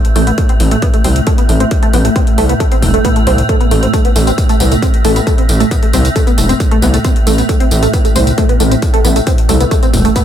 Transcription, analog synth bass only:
0.16 0.32 A1 medium
0.60 0.76 A1 loud
1.05 1.21 C2 medium
1.49 1.65 A1 medium
1.94 2.09 A1 medium
2.38 2.54 C2 medium
2.82 2.98 E1 medium
3.27 3.43 C2 loud
3.71 3.87 A1 medium
4.16 4.32 A1 loud
4.60 4.76 C2 medium
5.05 5.20 A1 medium
5.49 5.65 A1 medium
5.93 6.09 C2 loud
6.38 6.54 E1 medium
6.82 6.98 C2 loud
7.27 7.43 A1 medium
7.71 7.87 A1 loud
8.16 8.32 C2 medium
8.60 8.76 A1 medium
9.05 9.20 A1 medium
9.49 9.65 C2 medium
9.94 10.09 E1 medium

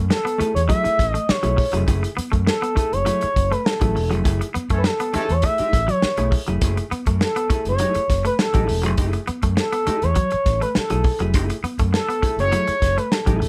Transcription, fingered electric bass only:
0.41 muted fingered electric bass stroke soft
0.56 0.68 E2 medium
0.86 muted fingered electric bass stroke soft
1.00 1.14 A1 medium
1.30 muted fingered electric bass stroke soft
1.45 1.57 B1 medium
1.74 1.86 F1 medium
1.88 2.02 F#1 loud
2.18 muted fingered electric bass stroke soft
2.33 2.46 F#2 medium
2.77 muted fingered electric bass stroke soft
2.94 3.06 F#1 medium
3.24 muted fingered electric bass stroke soft
3.36 3.50 F#1 medium
3.82 3.94 A1 medium
3.96 4.12 E1 medium
4.12 4.24 F1 medium
4.25 4.39 F#1 loud
4.56 muted fingered electric bass stroke soft
4.71 4.83 F#2 medium
5.16 muted fingered electric bass stroke soft
5.30 5.43 E2 medium
5.60 muted fingered electric bass stroke soft
5.74 5.88 A1 medium
6.04 muted fingered electric bass stroke soft
6.19 6.31 B1 medium
6.49 6.61 F1 medium
6.62 6.76 F#1 loud
6.92 muted fingered electric bass stroke soft
7.07 7.20 F#2 medium
7.50 muted fingered electric bass stroke soft
7.66 7.79 F#1 medium
7.96 muted fingered electric bass stroke soft
8.10 8.24 F#1 medium
8.55 8.67 A1 medium
8.70 8.86 E1 medium
8.86 8.98 F1 medium
8.98 9.12 F#1 medium
9.29 muted fingered electric bass stroke soft
9.44 9.56 F#2 medium
9.88 muted fingered electric bass stroke soft
10.04 10.16 E2 loud
10.34 muted fingered electric bass stroke soft
10.46 10.60 A1 medium
10.77 muted fingered electric bass stroke soft
10.92 11.04 B1 medium
11.21 11.35 F1 medium
11.35 11.49 F#1 loud
11.64 muted fingered electric bass stroke soft
11.79 11.92 F#2 medium
12.23 muted fingered electric bass stroke soft
12.38 12.51 F#1 loud
12.68 muted fingered electric bass stroke soft
12.82 12.96 F#1 medium
13.28 13.40 A1 medium
13.41 13.49 E1 medium

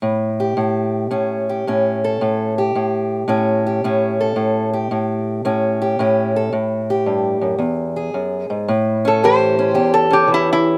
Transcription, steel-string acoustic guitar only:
0.02 0.56 A2 medium
0.40 1.49 G4 soft
0.57 1.10 A2 medium
1.11 1.67 A2 medium
1.11 1.68 C#4 medium
1.49 2.04 G4 soft
1.67 2.21 A2 medium
1.67 2.61 C#4 soft
2.04 2.58 A4 medium
2.21 2.75 A2 medium
2.58 3.66 G4 soft
2.75 3.27 A2 medium
3.28 3.84 A2 medium
3.28 3.84 C#4 medium
3.67 4.20 G4 soft
3.84 4.35 A2 medium
3.84 4.76 C#4 medium
4.21 4.73 A4 medium
4.36 4.90 A2 medium
4.73 5.80 G4 medium
4.91 5.44 A2 medium
5.45 5.98 A2 medium
5.45 5.99 C#4 medium
5.82 6.35 G4 medium
5.99 6.51 A2 medium
5.99 6.52 C#4 medium
6.36 6.51 A4 soft
6.53 7.60 A2 medium
6.90 7.59 G4 soft
7.06 7.41 G2 soft
7.41 7.58 F#2 medium
7.58 8.13 E2 medium
7.96 8.66 G#4 soft
8.14 8.50 F#2 medium
8.50 8.68 G#2 medium
8.68 9.76 A2 medium
9.05 9.58 C#4 medium
9.23 10.26 E3 medium
9.23 9.74 G4 medium
9.59 10.09 C#4 medium
9.74 10.78 E2 medium
9.74 10.78 G4 medium
10.11 10.78 C#4 soft
10.27 10.78 E3 medium

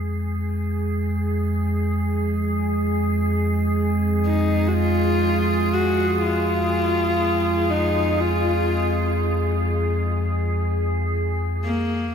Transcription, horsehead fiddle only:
4.26 4.69 D#4 medium
4.68 4.75 F#4 medium
4.74 5.75 F4 loud
5.73 6.22 F#4 medium
6.22 7.72 F4 loud
7.70 8.21 D#4 medium
8.20 9.18 F4 medium
11.66 12.15 A#3 loud

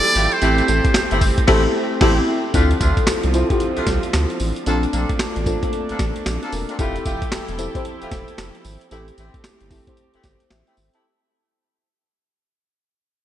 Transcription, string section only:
0.00 0.40 F3 medium
0.00 0.40 E4 medium
0.00 2.50 G4 medium
0.00 0.39 A4 loud
0.41 2.52 A3 medium
0.41 2.52 C4 medium
2.54 4.64 D3 medium
2.54 4.64 F3 medium
2.54 4.64 C4 medium
4.67 6.77 A3 medium
4.67 6.77 A#3 medium
4.67 6.77 D4 medium
6.79 8.89 F3 medium
6.79 8.89 E4 medium
6.79 8.89 G4 medium
6.79 8.89 A4 medium
8.91 11.01 A3 medium
8.91 11.01 C4 medium
8.91 11.01 G4 medium

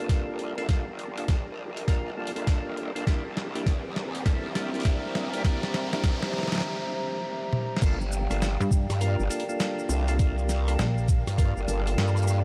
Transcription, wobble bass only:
0.09 0.38 G1 medium
0.39 0.67 C2 loud
0.69 1.27 G1 medium
1.28 1.86 A#1 loud
1.88 2.16 A#1 medium
2.17 2.33 A#1 loud
2.35 2.92 F1 loud
2.95 3.05 A#1 loud
3.07 3.64 C2 loud
3.66 4.24 E2 loud
4.26 4.54 E2 medium
4.55 4.83 C2 loud
4.85 5.13 C2 medium
5.15 5.43 E2 loud
5.44 6.02 C2 loud
6.03 6.61 E2 medium
7.82 8.28 G1 medium
8.30 8.57 G1 medium
8.90 9.16 G2 loud
9.19 9.29 G1 loud
9.89 10.77 C2 loud
11.27 11.54 G2 loud
11.57 11.66 G1 loud
11.68 11.96 G1 loud
11.97 12.43 G2 medium

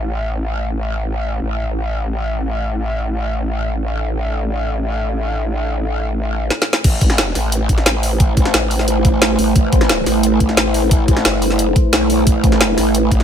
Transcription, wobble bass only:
0.00 1.40 A1 medium
1.42 6.50 A1 medium
6.84 7.34 A1 loud
7.35 7.68 A1 loud
7.69 8.52 A1 loud
8.54 9.37 A1 loud
9.39 9.54 A1 loud
9.56 10.05 A1 loud
10.06 10.39 A1 loud
10.40 11.24 A1 medium
11.25 11.75 G1 loud
11.93 12.25 B1 loud
12.27 12.76 A1 loud
12.78 13.10 A1 loud
13.11 13.23 A1 loud

